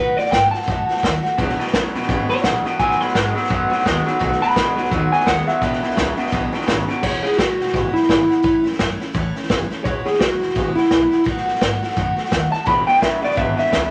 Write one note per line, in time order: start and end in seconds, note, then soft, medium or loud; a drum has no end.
0.00 0.13 B1 loud
0.00 0.17 B2 medium
0.00 0.17 D#3 medium
0.00 0.18 A3 medium
0.00 0.18 B3 medium
0.00 0.17 F#4 medium
0.00 0.17 B4 loud
0.17 0.29 A2 medium
0.17 0.32 A3 soft
0.17 0.32 B3 medium
0.17 0.32 F#4 medium
0.17 0.31 D5 medium
0.17 snare soft
0.25 snare soft
0.31 0.49 G#2 medium
0.31 0.53 D#3 medium
0.31 0.53 A3 medium
0.31 0.54 B3 medium
0.31 0.53 F#4 medium
0.31 0.51 G5 medium
0.31 kick loud
0.31 snare loud
0.31 hi-hat pedal loud
0.51 0.68 F#4 medium
0.51 1.34 A5 loud
0.51 muted upright bass stroke medium
0.51 snare soft
0.56 0.67 A3 soft
0.56 0.67 B3 soft
0.61 snare soft
0.67 0.84 F#2 medium
0.67 0.88 B2 medium
0.67 0.89 D#3 medium
0.67 0.89 A3 medium
0.67 0.89 B3 medium
0.67 0.88 F#4 medium
0.67 kick loud
0.67 snare soft
0.88 1.02 A3 medium
0.88 1.03 B3 medium
0.88 1.03 F#4 medium
0.88 muted upright bass stroke medium
0.88 snare soft
0.96 snare soft
1.02 1.20 D#2 loud
1.02 1.23 D#3 medium
1.02 1.24 A3 medium
1.02 1.23 B3 medium
1.02 1.22 F#4 medium
1.02 kick medium
1.02 snare loud
1.02 hi-hat pedal medium
1.23 1.39 A3 medium
1.23 1.38 B3 medium
1.23 1.37 F#4 medium
1.23 snare soft
1.38 1.55 E1 loud
1.38 1.57 E2 medium
1.38 1.59 E2 medium
1.38 1.57 B2 loud
1.38 1.59 B2 loud
1.38 1.60 E3 loud
1.38 1.59 G#3 loud
1.38 1.59 B3 loud
1.38 1.58 E4 medium
1.38 kick loud
1.38 snare soft
1.49 snare soft
1.59 1.72 E2 medium
1.59 1.72 B2 medium
1.59 1.73 E3 medium
1.59 1.74 G#3 medium
1.59 1.74 B3 medium
1.59 1.73 E4 medium
1.59 muted upright bass stroke medium
1.59 snare soft
1.67 snare soft
1.73 1.90 E1 medium
1.73 1.92 E2 medium
1.73 1.93 C#3 loud
1.73 1.95 E3 medium
1.73 1.95 G#3 medium
1.73 1.95 B3 medium
1.73 1.94 E4 medium
1.73 kick medium
1.73 snare loud
1.73 hi-hat pedal loud
1.94 2.06 E1 medium
1.94 2.07 E2 medium
1.94 2.08 B2 medium
1.94 2.09 E3 medium
1.94 2.09 G#3 medium
1.94 2.10 B3 medium
1.94 2.09 E4 medium
1.94 snare soft
2.02 snare soft
2.09 2.26 G#1 medium
2.09 2.28 E2 medium
2.09 2.30 E2 medium
2.09 2.28 B2 loud
2.09 2.30 B2 medium
2.09 2.29 E3 medium
2.09 2.29 G#3 loud
2.09 2.28 B3 loud
2.09 2.27 E4 loud
2.09 kick loud
2.09 snare soft
2.28 2.42 E2 medium
2.28 2.43 B2 medium
2.28 2.42 E3 soft
2.28 2.43 G#3 soft
2.28 2.43 B3 medium
2.28 2.43 E4 medium
2.28 2.43 C#5 loud
2.28 snare soft
2.37 snare soft
2.44 2.61 A#1 loud
2.44 2.63 E2 medium
2.44 2.63 C#3 loud
2.44 2.65 E3 medium
2.44 2.65 G#3 medium
2.44 2.64 B3 medium
2.44 2.64 E4 medium
2.44 2.78 F#5 loud
2.44 kick medium
2.44 snare loud
2.44 hi-hat pedal medium
2.65 2.78 E2 medium
2.65 2.78 B2 medium
2.65 2.79 E3 soft
2.65 2.80 G#3 soft
2.65 2.79 B3 medium
2.65 2.79 E4 medium
2.65 muted upright bass stroke medium
2.65 snare soft
2.79 2.96 B1 loud
2.79 2.98 B2 medium
2.79 3.01 B2 medium
2.79 3.01 D#3 medium
2.79 2.99 F#3 medium
2.79 3.01 A3 medium
2.79 3.01 B3 medium
2.79 2.99 F#4 medium
2.79 3.01 G#5 medium
2.79 kick loud
2.79 snare soft
2.91 snare soft
3.00 3.12 A2 medium
3.00 3.13 B2 medium
3.00 3.14 F#3 medium
3.00 3.15 A3 medium
3.00 3.15 B3 medium
3.00 3.15 F#4 medium
3.00 3.69 B5 loud
3.00 snare soft
3.07 snare soft
3.15 3.32 G#2 medium
3.15 3.34 B2 loud
3.15 3.36 D#3 medium
3.15 3.34 G#3 loud
3.15 3.35 A3 medium
3.15 3.35 B3 medium
3.15 3.33 F#4 medium
3.15 kick medium
3.15 snare loud
3.15 hi-hat pedal loud
3.35 3.48 B2 medium
3.35 3.49 F#3 medium
3.35 3.48 A3 medium
3.35 3.48 B3 medium
3.35 3.48 F#4 medium
3.35 snare soft
3.44 snare soft
3.48 3.67 F#2 medium
3.48 3.70 B2 medium
3.48 3.69 B2 medium
3.48 3.70 D#3 medium
3.48 3.69 F#3 medium
3.48 3.70 A3 medium
3.48 3.69 B3 loud
3.48 3.68 F#4 medium
3.48 kick loud
3.48 snare soft
3.70 3.84 B2 medium
3.70 3.84 F#3 loud
3.70 3.82 A3 medium
3.70 3.83 B3 medium
3.70 3.84 F#4 medium
3.70 muted upright bass stroke medium
3.70 snare soft
3.79 4.05 D#3 medium
3.79 snare soft
3.83 4.02 D#2 loud
3.83 4.04 B2 medium
3.83 4.04 G#3 medium
3.83 4.05 A3 medium
3.83 4.05 B3 medium
3.83 4.03 F#4 medium
3.83 kick medium
3.83 snare loud
3.83 hi-hat pedal medium
4.04 4.19 B2 medium
4.04 4.19 F#3 medium
4.04 4.19 A3 medium
4.04 4.20 B3 medium
4.04 4.20 F#4 medium
4.04 snare soft
4.19 4.38 B1 loud
4.19 4.41 B2 medium
4.19 4.39 B2 medium
4.19 4.41 D#3 medium
4.19 4.40 F#3 loud
4.19 4.42 A3 loud
4.19 4.41 B3 medium
4.19 4.40 F#4 medium
4.19 kick loud
4.19 snare soft
4.32 snare soft
4.41 4.54 B2 medium
4.41 4.55 F#3 medium
4.41 4.55 A3 soft
4.41 4.55 B3 medium
4.41 4.56 F#4 medium
4.41 5.10 B5 loud
4.41 muted upright bass stroke medium
4.41 snare soft
4.49 snare soft
4.55 4.74 B2 medium
4.55 4.77 D#3 medium
4.55 4.75 G#3 loud
4.55 4.77 A3 medium
4.55 4.76 B3 medium
4.55 4.75 F#4 medium
4.55 kick loud
4.55 snare loud
4.55 hi-hat pedal loud
4.76 4.89 B1 medium
4.76 4.89 B2 medium
4.76 4.90 F#3 medium
4.76 4.91 A3 soft
4.76 4.91 B3 soft
4.76 4.91 F#4 medium
4.76 snare soft
4.84 snare soft
4.91 5.08 D#2 medium
4.91 5.10 B2 medium
4.91 5.12 B2 medium
4.91 5.13 D#3 medium
4.91 5.10 F#3 loud
4.91 5.13 A3 loud
4.91 5.13 B3 medium
4.91 5.11 F#4 loud
4.91 kick loud
4.91 snare soft
5.12 5.24 B2 medium
5.12 5.25 F#3 medium
5.12 5.25 A3 soft
5.12 5.26 B3 medium
5.12 5.27 F#4 medium
5.12 5.26 G#5 medium
5.12 snare soft
5.20 snare soft
5.26 5.43 D#2 medium
5.26 5.45 B2 medium
5.26 5.47 D#3 medium
5.26 5.45 G#3 loud
5.26 5.48 A3 medium
5.26 5.48 B3 medium
5.26 5.47 F#4 medium
5.26 5.47 F#5 loud
5.26 kick medium
5.26 snare loud
5.26 hi-hat pedal medium
5.47 5.60 B2 medium
5.47 5.60 F#3 medium
5.47 5.63 A3 soft
5.47 5.62 B3 medium
5.47 5.62 F#4 medium
5.47 6.50 E5 loud
5.47 muted upright bass stroke medium
5.47 snare soft
5.61 5.78 E1 loud
5.61 5.80 E2 medium
5.61 5.83 E2 medium
5.61 5.80 B2 loud
5.61 5.83 B2 medium
5.61 5.83 E3 loud
5.61 5.83 G#3 medium
5.61 5.83 B3 medium
5.61 5.82 E4 loud
5.61 kick loud
5.61 snare soft
5.73 snare soft
5.82 5.95 C#2 medium
5.82 5.95 E2 medium
5.82 5.96 B2 medium
5.82 5.94 E3 soft
5.82 5.95 G#3 medium
5.82 5.96 B3 soft
5.82 5.97 E4 medium
5.82 snare soft
5.90 snare soft
5.95 6.14 C#2 medium
5.95 6.16 E2 medium
5.95 6.16 C#3 medium
5.95 6.17 E3 medium
5.95 6.17 G#3 medium
5.95 6.16 B3 medium
5.95 6.16 E4 medium
5.95 kick medium
5.95 snare loud
5.95 hi-hat pedal medium
6.17 6.30 E2 medium
6.17 6.31 B2 medium
6.17 6.31 E3 soft
6.17 6.31 G#3 medium
6.17 6.31 B3 medium
6.17 6.32 E4 medium
6.17 snare soft
6.26 snare soft
6.32 6.49 B1 medium
6.32 6.51 E2 medium
6.32 6.53 E2 medium
6.32 6.53 B2 medium
6.32 6.51 B2 loud
6.32 6.53 E3 medium
6.32 6.53 G#3 medium
6.32 6.52 B3 loud
6.32 6.51 E4 medium
6.32 kick loud
6.32 snare soft
6.52 6.65 E2 medium
6.52 6.66 B2 medium
6.52 6.65 E3 medium
6.52 6.66 G#3 medium
6.52 6.67 B3 medium
6.52 6.67 E4 medium
6.52 muted upright bass stroke medium
6.52 snare soft
6.61 snare soft
6.66 6.84 G#1 loud
6.66 6.86 E2 medium
6.66 6.86 C#3 loud
6.66 6.88 E3 medium
6.66 6.88 G#3 medium
6.66 6.88 B3 medium
6.66 6.87 E4 medium
6.66 kick medium
6.66 snare loud
6.66 hi-hat pedal medium
6.88 7.01 E2 medium
6.88 7.02 B2 medium
6.88 7.02 E3 medium
6.88 7.02 G#3 medium
6.88 7.03 B3 medium
6.88 7.03 E4 medium
6.88 muted upright bass stroke medium
6.88 snare soft
7.03 7.20 E1 loud
7.03 7.24 E2 medium
7.03 7.24 B2 medium
7.03 7.24 E3 medium
7.03 7.24 G#3 medium
7.03 7.23 B3 medium
7.03 7.23 E4 medium
7.03 7.24 C#5 loud
7.03 kick loud
7.03 snare soft
7.03 crash loud
7.23 7.38 E3 soft
7.23 7.39 G#3 soft
7.23 7.39 B3 medium
7.23 7.38 E4 medium
7.23 7.37 G#4 medium
7.23 muted upright bass stroke medium
7.23 snare soft
7.32 snare soft
7.37 7.55 E1 medium
7.37 7.60 E3 medium
7.37 7.60 G#3 medium
7.37 7.59 B3 medium
7.37 7.59 E4 medium
7.37 7.92 F#4 medium
7.37 kick medium
7.37 snare loud
7.37 hi-hat pedal medium
7.59 7.71 E1 loud
7.59 7.75 E3 soft
7.59 7.75 G#3 soft
7.59 7.74 B3 soft
7.59 7.74 E4 medium
7.59 snare soft
7.67 snare soft
7.74 7.90 G#1 medium
7.74 7.95 E2 medium
7.74 7.95 B2 medium
7.74 7.96 E3 medium
7.74 7.95 G#3 medium
7.74 7.95 B3 medium
7.74 7.94 E4 medium
7.74 kick loud
7.74 snare soft
7.94 8.09 G#3 medium
7.94 8.10 B3 medium
7.94 8.63 E4 medium
7.94 8.09 E4 medium
7.94 muted upright bass stroke medium
7.94 snare soft
7.98 8.08 E3 soft
8.02 snare soft
8.09 8.26 G#1 loud
8.09 8.30 E3 medium
8.09 8.29 G#3 medium
8.09 8.28 B3 medium
8.09 8.28 E4 medium
8.09 kick medium
8.09 snare loud
8.09 hi-hat pedal medium
8.29 8.42 E3 soft
8.29 8.43 G#3 medium
8.29 8.43 B3 medium
8.29 8.43 E4 medium
8.29 muted upright bass stroke medium
8.29 snare soft
8.43 8.61 A1 loud
8.43 8.65 A2 loud
8.43 8.65 E3 loud
8.43 8.65 A3 loud
8.43 8.64 C#4 medium
8.43 8.62 E4 loud
8.43 kick loud
8.43 snare soft
8.64 8.76 F#2 medium
8.64 8.78 A3 soft
8.64 8.78 C#4 medium
8.64 8.79 E4 medium
8.64 snare soft
8.72 snare soft
8.79 8.96 F#2 medium
8.79 9.00 E3 medium
8.79 9.01 A3 medium
8.79 9.00 C#4 medium
8.79 8.99 E4 medium
8.79 kick medium
8.79 snare loud
8.79 hi-hat pedal medium
9.00 9.14 A3 medium
9.00 9.14 C#4 medium
9.00 9.14 E4 medium
9.00 muted upright bass stroke medium
9.00 snare soft
9.14 9.31 E2 medium
9.14 9.35 A2 medium
9.14 9.36 E3 medium
9.14 9.36 A3 medium
9.14 9.36 C#4 medium
9.14 9.35 E4 loud
9.14 kick loud
9.14 snare soft
9.35 9.49 A3 medium
9.35 9.49 C#4 medium
9.35 9.50 E4 medium
9.35 muted upright bass stroke medium
9.35 snare soft
9.43 snare soft
9.49 9.67 F#1 loud
9.49 9.70 E3 medium
9.49 9.71 A3 medium
9.49 9.70 C#4 medium
9.49 9.69 E4 medium
9.49 kick medium
9.49 snare loud
9.49 hi-hat pedal medium
9.70 9.85 A3 medium
9.70 9.85 C#4 medium
9.70 9.85 E4 medium
9.70 muted upright bass stroke medium
9.70 snare soft
9.84 10.02 E1 loud
9.84 10.06 E2 medium
9.84 10.06 B2 medium
9.84 10.06 E3 medium
9.84 10.05 G#3 medium
9.84 10.05 B3 medium
9.84 10.04 E4 loud
9.84 10.05 C#5 medium
9.84 kick loud
9.84 snare soft
10.05 10.18 E3 soft
10.05 10.19 G#3 medium
10.05 10.19 B3 medium
10.05 10.20 E4 medium
10.05 10.20 G#4 loud
10.05 muted upright bass stroke medium
10.05 snare soft
10.13 snare soft
10.19 10.37 E1 loud
10.19 10.41 E3 medium
10.19 10.40 G#3 medium
10.19 10.40 B3 medium
10.19 10.38 E4 medium
10.19 10.74 F#4 medium
10.19 kick medium
10.19 snare loud
10.19 hi-hat pedal medium
10.40 10.53 E1 loud
10.40 10.54 E3 soft
10.40 10.55 G#3 soft
10.40 10.55 B3 soft
10.40 10.55 E4 medium
10.40 snare soft
10.49 snare soft
10.55 10.73 G#1 loud
10.55 10.76 E2 medium
10.55 10.76 B2 medium
10.55 10.77 E3 medium
10.55 10.76 G#3 medium
10.55 10.75 B3 medium
10.55 10.74 E4 medium
10.55 kick loud
10.55 snare soft
10.75 10.88 E3 soft
10.75 10.89 G#3 medium
10.75 10.90 B3 medium
10.75 10.90 E4 medium
10.75 11.24 E4 medium
10.75 muted upright bass stroke medium
10.75 snare soft
10.84 snare soft
10.90 11.08 B1 loud
10.90 11.11 E3 medium
10.90 11.11 G#3 medium
10.90 11.10 B3 medium
10.90 11.09 E4 medium
10.90 kick medium
10.90 snare loud
10.90 hi-hat pedal medium
11.10 11.24 E3 medium
11.10 11.25 G#3 medium
11.10 11.24 B3 medium
11.10 11.25 E4 medium
11.10 muted upright bass stroke medium
11.10 snare soft
11.24 11.43 B1 loud
11.24 11.46 B2 loud
11.24 11.46 D#3 medium
11.24 11.46 A3 loud
11.24 11.45 B3 loud
11.24 11.44 F#4 loud
11.24 kick loud
11.24 snare soft
11.37 snare soft
11.45 11.57 A2 medium
11.45 11.60 A3 medium
11.45 11.61 B3 medium
11.45 11.60 F#4 medium
11.45 snare soft
11.55 snare soft
11.61 11.78 G#2 medium
11.61 11.82 D#3 medium
11.61 11.82 A3 medium
11.61 11.83 B3 medium
11.61 11.81 F#4 medium
11.61 kick medium
11.61 snare loud
11.61 hi-hat pedal medium
11.81 11.96 A3 soft
11.81 11.96 B3 medium
11.81 11.96 F#4 medium
11.81 muted upright bass stroke medium
11.81 snare soft
11.90 snare soft
11.96 12.13 F#2 medium
11.96 12.17 B2 medium
11.96 12.17 D#3 medium
11.96 12.18 A3 medium
11.96 12.17 B3 medium
11.96 12.15 F#4 loud
11.96 kick loud
11.96 snare soft
12.16 12.29 A3 medium
12.16 12.30 B3 medium
12.16 12.31 F#4 medium
12.16 muted upright bass stroke medium
12.16 snare soft
12.25 snare soft
12.30 12.48 D#2 loud
12.30 12.52 D#3 medium
12.30 12.52 A3 medium
12.30 12.51 B3 medium
12.30 12.50 F#4 medium
12.30 kick medium
12.30 snare loud
12.30 hi-hat pedal medium
12.52 12.66 A3 soft
12.52 12.65 B3 soft
12.52 12.66 F#4 medium
12.52 12.66 A5 medium
12.52 muted upright bass stroke medium
12.52 snare soft
12.65 12.84 E1 loud
12.65 12.87 E2 medium
12.65 12.85 E2 medium
12.65 12.87 B2 medium
12.65 12.85 B2 loud
12.65 12.87 E3 medium
12.65 12.86 G#3 medium
12.65 12.86 B3 loud
12.65 12.85 E4 medium
12.65 12.87 B5 medium
12.65 kick loud
12.65 snare soft
12.87 13.00 E2 medium
12.87 13.00 B2 medium
12.87 13.00 E3 soft
12.87 13.01 G#3 soft
12.87 13.01 B3 medium
12.87 13.01 E4 medium
12.87 13.01 G5 loud
12.87 snare soft
12.95 snare soft
13.01 13.19 E1 loud
13.01 13.20 E2 medium
13.01 13.20 C#3 medium
13.01 13.22 E3 medium
13.01 13.21 G#3 medium
13.01 13.21 B3 medium
13.01 13.20 E4 medium
13.01 13.22 E5 medium
13.01 kick medium
13.01 snare loud
13.01 hi-hat pedal medium
13.21 13.34 E1 medium
13.21 13.35 E2 medium
13.21 13.35 B2 medium
13.21 13.36 E3 soft
13.21 13.36 G#3 medium
13.21 13.36 B3 medium
13.21 13.36 E4 medium
13.21 13.37 D5 medium
13.21 snare soft
13.31 snare soft
13.35 13.54 G#1 medium
13.35 13.57 E2 medium
13.35 13.55 E2 medium
13.35 13.57 B2 medium
13.35 13.56 B2 medium
13.35 13.58 E3 medium
13.35 13.57 G#3 medium
13.35 13.56 B3 medium
13.35 13.56 E4 medium
13.35 13.57 E5 medium
13.35 kick loud
13.35 snare soft
13.57 13.70 E2 medium
13.57 13.70 B2 medium
13.57 13.69 E3 soft
13.57 13.70 G#3 medium
13.57 13.71 B3 medium
13.57 13.72 E4 medium
13.57 13.91 E5 loud
13.57 muted upright bass stroke medium
13.57 snare soft
13.66 snare soft
13.70 13.89 C#2 medium
13.70 13.91 E2 medium
13.70 13.91 C#3 loud
13.70 13.91 E3 medium
13.70 13.91 G#3 medium
13.70 13.91 B3 medium
13.70 13.90 E4 medium
13.70 kick medium
13.70 snare loud
13.70 hi-hat pedal medium